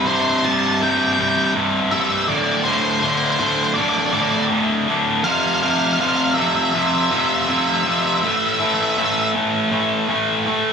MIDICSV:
0, 0, Header, 1, 3, 480
1, 0, Start_track
1, 0, Tempo, 742574
1, 1472, Time_signature, 4, 2, 24, 8
1, 6935, End_track
2, 0, Start_track
2, 0, Title_t, "Lead electric guitar"
2, 0, Program_c, 0, 29
2, 36, Note_on_c, 0, 72, 102
2, 82, Note_off_c, 0, 72, 0
2, 85, Note_on_c, 0, 72, 75
2, 134, Note_off_c, 0, 72, 0
2, 139, Note_on_c, 0, 72, 92
2, 177, Note_off_c, 0, 72, 0
2, 179, Note_on_c, 0, 72, 83
2, 229, Note_off_c, 0, 72, 0
2, 233, Note_on_c, 0, 72, 84
2, 282, Note_off_c, 0, 72, 0
2, 286, Note_on_c, 0, 81, 106
2, 331, Note_off_c, 0, 81, 0
2, 333, Note_on_c, 0, 81, 87
2, 378, Note_off_c, 0, 81, 0
2, 380, Note_on_c, 0, 81, 98
2, 429, Note_off_c, 0, 81, 0
2, 434, Note_on_c, 0, 81, 81
2, 478, Note_off_c, 0, 81, 0
2, 481, Note_on_c, 0, 81, 85
2, 529, Note_off_c, 0, 81, 0
2, 532, Note_on_c, 0, 79, 103
2, 579, Note_off_c, 0, 79, 0
2, 581, Note_on_c, 0, 79, 68
2, 629, Note_off_c, 0, 79, 0
2, 631, Note_on_c, 0, 79, 83
2, 673, Note_off_c, 0, 79, 0
2, 675, Note_on_c, 0, 79, 74
2, 724, Note_off_c, 0, 79, 0
2, 730, Note_on_c, 0, 79, 86
2, 778, Note_off_c, 0, 79, 0
2, 780, Note_on_c, 0, 79, 76
2, 829, Note_off_c, 0, 79, 0
2, 832, Note_on_c, 0, 79, 91
2, 881, Note_off_c, 0, 79, 0
2, 883, Note_on_c, 0, 79, 69
2, 929, Note_off_c, 0, 79, 0
2, 932, Note_on_c, 0, 79, 80
2, 981, Note_off_c, 0, 79, 0
2, 1237, Note_on_c, 0, 76, 110
2, 1292, Note_off_c, 0, 76, 0
2, 1294, Note_on_c, 0, 76, 93
2, 1347, Note_off_c, 0, 76, 0
2, 1350, Note_on_c, 0, 76, 110
2, 1404, Note_off_c, 0, 76, 0
2, 1406, Note_on_c, 0, 76, 81
2, 1462, Note_off_c, 0, 76, 0
2, 1472, Note_on_c, 0, 74, 115
2, 1522, Note_off_c, 0, 74, 0
2, 1525, Note_on_c, 0, 74, 82
2, 1576, Note_off_c, 0, 74, 0
2, 1579, Note_on_c, 0, 74, 100
2, 1634, Note_off_c, 0, 74, 0
2, 1642, Note_on_c, 0, 74, 82
2, 1697, Note_off_c, 0, 74, 0
2, 1704, Note_on_c, 0, 72, 93
2, 1755, Note_off_c, 0, 72, 0
2, 1757, Note_on_c, 0, 72, 78
2, 1813, Note_off_c, 0, 72, 0
2, 1818, Note_on_c, 0, 72, 83
2, 1871, Note_off_c, 0, 72, 0
2, 1874, Note_on_c, 0, 72, 71
2, 1929, Note_off_c, 0, 72, 0
2, 1935, Note_on_c, 0, 72, 92
2, 1987, Note_off_c, 0, 72, 0
2, 1992, Note_on_c, 0, 72, 73
2, 2036, Note_off_c, 0, 72, 0
2, 2039, Note_on_c, 0, 72, 87
2, 2090, Note_off_c, 0, 72, 0
2, 2094, Note_on_c, 0, 72, 76
2, 2134, Note_off_c, 0, 72, 0
2, 2137, Note_on_c, 0, 72, 90
2, 2188, Note_off_c, 0, 72, 0
2, 2193, Note_on_c, 0, 72, 84
2, 2237, Note_off_c, 0, 72, 0
2, 2239, Note_on_c, 0, 72, 88
2, 2290, Note_off_c, 0, 72, 0
2, 2296, Note_on_c, 0, 72, 76
2, 2343, Note_off_c, 0, 72, 0
2, 2345, Note_on_c, 0, 72, 77
2, 2397, Note_off_c, 0, 72, 0
2, 2416, Note_on_c, 0, 74, 102
2, 2463, Note_off_c, 0, 74, 0
2, 2466, Note_on_c, 0, 74, 70
2, 2513, Note_off_c, 0, 74, 0
2, 2515, Note_on_c, 0, 74, 80
2, 2567, Note_off_c, 0, 74, 0
2, 2574, Note_on_c, 0, 74, 76
2, 2623, Note_off_c, 0, 74, 0
2, 2625, Note_on_c, 0, 74, 94
2, 2665, Note_off_c, 0, 74, 0
2, 2668, Note_on_c, 0, 74, 72
2, 2719, Note_off_c, 0, 74, 0
2, 2725, Note_on_c, 0, 74, 85
2, 2776, Note_off_c, 0, 74, 0
2, 2782, Note_on_c, 0, 74, 69
2, 2816, Note_off_c, 0, 74, 0
2, 2819, Note_on_c, 0, 74, 75
2, 2870, Note_off_c, 0, 74, 0
2, 3387, Note_on_c, 0, 77, 127
2, 3432, Note_off_c, 0, 77, 0
2, 3435, Note_on_c, 0, 77, 87
2, 3484, Note_off_c, 0, 77, 0
2, 3491, Note_on_c, 0, 77, 107
2, 3531, Note_off_c, 0, 77, 0
2, 3533, Note_on_c, 0, 77, 93
2, 3580, Note_off_c, 0, 77, 0
2, 3583, Note_on_c, 0, 77, 119
2, 3632, Note_off_c, 0, 77, 0
2, 3636, Note_on_c, 0, 77, 100
2, 3683, Note_off_c, 0, 77, 0
2, 3686, Note_on_c, 0, 77, 121
2, 3735, Note_off_c, 0, 77, 0
2, 3738, Note_on_c, 0, 77, 108
2, 3781, Note_off_c, 0, 77, 0
2, 3783, Note_on_c, 0, 77, 123
2, 3830, Note_off_c, 0, 77, 0
2, 3833, Note_on_c, 0, 77, 107
2, 3881, Note_off_c, 0, 77, 0
2, 3884, Note_on_c, 0, 77, 117
2, 3929, Note_off_c, 0, 77, 0
2, 3931, Note_on_c, 0, 77, 98
2, 3981, Note_off_c, 0, 77, 0
2, 3984, Note_on_c, 0, 77, 107
2, 4032, Note_off_c, 0, 77, 0
2, 4034, Note_on_c, 0, 77, 87
2, 4078, Note_off_c, 0, 77, 0
2, 4081, Note_on_c, 0, 77, 107
2, 4096, Note_off_c, 0, 77, 0
2, 4099, Note_on_c, 0, 76, 96
2, 4135, Note_off_c, 0, 76, 0
2, 4138, Note_on_c, 0, 76, 78
2, 4184, Note_off_c, 0, 76, 0
2, 4191, Note_on_c, 0, 76, 99
2, 4235, Note_off_c, 0, 76, 0
2, 4237, Note_on_c, 0, 76, 84
2, 4284, Note_off_c, 0, 76, 0
2, 4290, Note_on_c, 0, 76, 85
2, 4336, Note_off_c, 0, 76, 0
2, 4339, Note_on_c, 0, 76, 112
2, 4383, Note_off_c, 0, 76, 0
2, 4386, Note_on_c, 0, 76, 80
2, 4435, Note_off_c, 0, 76, 0
2, 4437, Note_on_c, 0, 76, 93
2, 4488, Note_off_c, 0, 76, 0
2, 4490, Note_on_c, 0, 76, 81
2, 4541, Note_off_c, 0, 76, 0
2, 4545, Note_on_c, 0, 76, 105
2, 4596, Note_off_c, 0, 76, 0
2, 4599, Note_on_c, 0, 76, 90
2, 4640, Note_off_c, 0, 76, 0
2, 4643, Note_on_c, 0, 76, 101
2, 4690, Note_off_c, 0, 76, 0
2, 4693, Note_on_c, 0, 76, 85
2, 4741, Note_off_c, 0, 76, 0
2, 4744, Note_on_c, 0, 76, 107
2, 4793, Note_off_c, 0, 76, 0
2, 4796, Note_on_c, 0, 76, 87
2, 4846, Note_off_c, 0, 76, 0
2, 4849, Note_on_c, 0, 76, 104
2, 4894, Note_off_c, 0, 76, 0
2, 4896, Note_on_c, 0, 76, 82
2, 4947, Note_off_c, 0, 76, 0
2, 4953, Note_on_c, 0, 76, 90
2, 4998, Note_off_c, 0, 76, 0
2, 5000, Note_on_c, 0, 76, 81
2, 5051, Note_off_c, 0, 76, 0
2, 5060, Note_on_c, 0, 76, 103
2, 5108, Note_off_c, 0, 76, 0
2, 5110, Note_on_c, 0, 76, 73
2, 5159, Note_off_c, 0, 76, 0
2, 5162, Note_on_c, 0, 76, 81
2, 5206, Note_off_c, 0, 76, 0
2, 5209, Note_on_c, 0, 76, 76
2, 5258, Note_off_c, 0, 76, 0
2, 5263, Note_on_c, 0, 76, 88
2, 5305, Note_off_c, 0, 76, 0
2, 5307, Note_on_c, 0, 76, 72
2, 5354, Note_off_c, 0, 76, 0
2, 5357, Note_on_c, 0, 76, 86
2, 5402, Note_off_c, 0, 76, 0
2, 5405, Note_on_c, 0, 76, 79
2, 5455, Note_off_c, 0, 76, 0
2, 5465, Note_on_c, 0, 76, 92
2, 5514, Note_off_c, 0, 76, 0
2, 5517, Note_on_c, 0, 76, 74
2, 5549, Note_off_c, 0, 76, 0
2, 5552, Note_on_c, 0, 76, 90
2, 5601, Note_off_c, 0, 76, 0
2, 5606, Note_on_c, 0, 76, 71
2, 5648, Note_off_c, 0, 76, 0
2, 5651, Note_on_c, 0, 76, 91
2, 5700, Note_off_c, 0, 76, 0
2, 5704, Note_on_c, 0, 76, 75
2, 5745, Note_off_c, 0, 76, 0
2, 5747, Note_on_c, 0, 76, 80
2, 5797, Note_off_c, 0, 76, 0
2, 5804, Note_on_c, 0, 76, 70
2, 5845, Note_off_c, 0, 76, 0
2, 5847, Note_on_c, 0, 76, 78
2, 5897, Note_off_c, 0, 76, 0
2, 5905, Note_on_c, 0, 76, 67
2, 5953, Note_off_c, 0, 76, 0
2, 5956, Note_on_c, 0, 76, 78
2, 6006, Note_off_c, 0, 76, 0
2, 6935, End_track
3, 0, Start_track
3, 0, Title_t, "Distorted electric guitar"
3, 0, Program_c, 1, 30
3, 48, Note_on_c, 1, 36, 84
3, 49, Note_on_c, 1, 43, 95
3, 49, Note_on_c, 1, 48, 85
3, 275, Note_off_c, 1, 36, 0
3, 279, Note_off_c, 1, 43, 0
3, 281, Note_off_c, 1, 48, 0
3, 283, Note_on_c, 1, 36, 94
3, 286, Note_on_c, 1, 43, 107
3, 288, Note_on_c, 1, 48, 116
3, 516, Note_off_c, 1, 36, 0
3, 519, Note_off_c, 1, 43, 0
3, 522, Note_off_c, 1, 48, 0
3, 524, Note_on_c, 1, 36, 82
3, 527, Note_on_c, 1, 43, 91
3, 529, Note_on_c, 1, 48, 88
3, 752, Note_off_c, 1, 36, 0
3, 756, Note_off_c, 1, 43, 0
3, 759, Note_off_c, 1, 48, 0
3, 760, Note_on_c, 1, 36, 85
3, 764, Note_on_c, 1, 43, 96
3, 767, Note_on_c, 1, 48, 102
3, 993, Note_off_c, 1, 36, 0
3, 996, Note_off_c, 1, 43, 0
3, 997, Note_off_c, 1, 48, 0
3, 1001, Note_on_c, 1, 36, 92
3, 1004, Note_on_c, 1, 43, 98
3, 1005, Note_on_c, 1, 48, 101
3, 1232, Note_off_c, 1, 36, 0
3, 1236, Note_off_c, 1, 43, 0
3, 1238, Note_off_c, 1, 48, 0
3, 1240, Note_on_c, 1, 36, 96
3, 1244, Note_on_c, 1, 43, 96
3, 1246, Note_on_c, 1, 48, 101
3, 1462, Note_off_c, 1, 36, 0
3, 1464, Note_off_c, 1, 43, 0
3, 1464, Note_off_c, 1, 48, 0
3, 1477, Note_on_c, 1, 38, 91
3, 1479, Note_on_c, 1, 45, 115
3, 1482, Note_on_c, 1, 50, 112
3, 1708, Note_off_c, 1, 38, 0
3, 1711, Note_off_c, 1, 45, 0
3, 1712, Note_off_c, 1, 50, 0
3, 1716, Note_on_c, 1, 38, 90
3, 1719, Note_on_c, 1, 45, 96
3, 1719, Note_on_c, 1, 50, 101
3, 1946, Note_off_c, 1, 38, 0
3, 1947, Note_off_c, 1, 45, 0
3, 1952, Note_off_c, 1, 50, 0
3, 1954, Note_on_c, 1, 38, 97
3, 1955, Note_on_c, 1, 45, 86
3, 1959, Note_on_c, 1, 50, 105
3, 2183, Note_off_c, 1, 38, 0
3, 2188, Note_off_c, 1, 45, 0
3, 2190, Note_off_c, 1, 50, 0
3, 2191, Note_on_c, 1, 38, 96
3, 2196, Note_on_c, 1, 45, 106
3, 2198, Note_on_c, 1, 50, 114
3, 2427, Note_off_c, 1, 38, 0
3, 2429, Note_off_c, 1, 45, 0
3, 2431, Note_off_c, 1, 50, 0
3, 2435, Note_on_c, 1, 38, 77
3, 2437, Note_on_c, 1, 45, 84
3, 2439, Note_on_c, 1, 50, 93
3, 2664, Note_off_c, 1, 38, 0
3, 2666, Note_off_c, 1, 45, 0
3, 2669, Note_off_c, 1, 50, 0
3, 2672, Note_on_c, 1, 38, 93
3, 2674, Note_on_c, 1, 45, 97
3, 2677, Note_on_c, 1, 50, 102
3, 2903, Note_off_c, 1, 38, 0
3, 2906, Note_off_c, 1, 45, 0
3, 2911, Note_off_c, 1, 50, 0
3, 2911, Note_on_c, 1, 38, 90
3, 2914, Note_on_c, 1, 45, 107
3, 2918, Note_on_c, 1, 50, 101
3, 3146, Note_off_c, 1, 38, 0
3, 3148, Note_off_c, 1, 45, 0
3, 3152, Note_off_c, 1, 50, 0
3, 3154, Note_on_c, 1, 38, 86
3, 3156, Note_on_c, 1, 45, 98
3, 3160, Note_on_c, 1, 50, 107
3, 3378, Note_off_c, 1, 38, 0
3, 3379, Note_off_c, 1, 45, 0
3, 3381, Note_off_c, 1, 50, 0
3, 3393, Note_on_c, 1, 41, 104
3, 3394, Note_on_c, 1, 48, 102
3, 3398, Note_on_c, 1, 53, 121
3, 3629, Note_off_c, 1, 41, 0
3, 3631, Note_off_c, 1, 48, 0
3, 3633, Note_off_c, 1, 53, 0
3, 3637, Note_on_c, 1, 41, 95
3, 3639, Note_on_c, 1, 48, 98
3, 3641, Note_on_c, 1, 53, 104
3, 3866, Note_off_c, 1, 41, 0
3, 3868, Note_off_c, 1, 48, 0
3, 3870, Note_off_c, 1, 53, 0
3, 3873, Note_on_c, 1, 41, 95
3, 3876, Note_on_c, 1, 48, 104
3, 3878, Note_on_c, 1, 53, 95
3, 4110, Note_off_c, 1, 41, 0
3, 4111, Note_off_c, 1, 48, 0
3, 4115, Note_off_c, 1, 53, 0
3, 4118, Note_on_c, 1, 41, 113
3, 4119, Note_on_c, 1, 48, 114
3, 4123, Note_on_c, 1, 53, 127
3, 4351, Note_off_c, 1, 41, 0
3, 4353, Note_off_c, 1, 48, 0
3, 4356, Note_off_c, 1, 53, 0
3, 4359, Note_on_c, 1, 41, 89
3, 4361, Note_on_c, 1, 48, 90
3, 4363, Note_on_c, 1, 53, 90
3, 4587, Note_off_c, 1, 41, 0
3, 4591, Note_off_c, 1, 48, 0
3, 4593, Note_off_c, 1, 53, 0
3, 4595, Note_on_c, 1, 41, 78
3, 4599, Note_on_c, 1, 48, 98
3, 4601, Note_on_c, 1, 53, 104
3, 4826, Note_off_c, 1, 41, 0
3, 4829, Note_off_c, 1, 48, 0
3, 4834, Note_off_c, 1, 53, 0
3, 4834, Note_on_c, 1, 41, 92
3, 4837, Note_on_c, 1, 48, 108
3, 4842, Note_on_c, 1, 53, 107
3, 5066, Note_off_c, 1, 41, 0
3, 5067, Note_off_c, 1, 48, 0
3, 5070, Note_off_c, 1, 53, 0
3, 5074, Note_on_c, 1, 41, 87
3, 5075, Note_on_c, 1, 48, 92
3, 5078, Note_on_c, 1, 53, 99
3, 5300, Note_off_c, 1, 41, 0
3, 5300, Note_off_c, 1, 48, 0
3, 5302, Note_off_c, 1, 53, 0
3, 5318, Note_on_c, 1, 45, 102
3, 5321, Note_on_c, 1, 52, 109
3, 5321, Note_on_c, 1, 57, 106
3, 5545, Note_off_c, 1, 45, 0
3, 5553, Note_off_c, 1, 57, 0
3, 5553, Note_on_c, 1, 45, 88
3, 5554, Note_off_c, 1, 52, 0
3, 5556, Note_on_c, 1, 52, 110
3, 5560, Note_on_c, 1, 57, 106
3, 5791, Note_off_c, 1, 45, 0
3, 5796, Note_off_c, 1, 57, 0
3, 5798, Note_on_c, 1, 45, 85
3, 5800, Note_off_c, 1, 52, 0
3, 5803, Note_on_c, 1, 52, 96
3, 5804, Note_on_c, 1, 57, 97
3, 6034, Note_off_c, 1, 45, 0
3, 6039, Note_off_c, 1, 57, 0
3, 6042, Note_off_c, 1, 52, 0
3, 6042, Note_on_c, 1, 45, 107
3, 6044, Note_on_c, 1, 52, 112
3, 6047, Note_on_c, 1, 57, 113
3, 6273, Note_off_c, 1, 45, 0
3, 6276, Note_off_c, 1, 52, 0
3, 6276, Note_off_c, 1, 57, 0
3, 6281, Note_on_c, 1, 45, 77
3, 6283, Note_on_c, 1, 57, 87
3, 6284, Note_on_c, 1, 52, 97
3, 6514, Note_off_c, 1, 45, 0
3, 6517, Note_off_c, 1, 52, 0
3, 6519, Note_off_c, 1, 57, 0
3, 6521, Note_on_c, 1, 45, 98
3, 6525, Note_on_c, 1, 52, 94
3, 6526, Note_on_c, 1, 57, 111
3, 6753, Note_off_c, 1, 45, 0
3, 6756, Note_off_c, 1, 52, 0
3, 6760, Note_off_c, 1, 57, 0
3, 6761, Note_on_c, 1, 45, 93
3, 6763, Note_on_c, 1, 52, 90
3, 6767, Note_on_c, 1, 57, 110
3, 6935, Note_off_c, 1, 45, 0
3, 6935, Note_off_c, 1, 52, 0
3, 6935, Note_off_c, 1, 57, 0
3, 6935, End_track
0, 0, End_of_file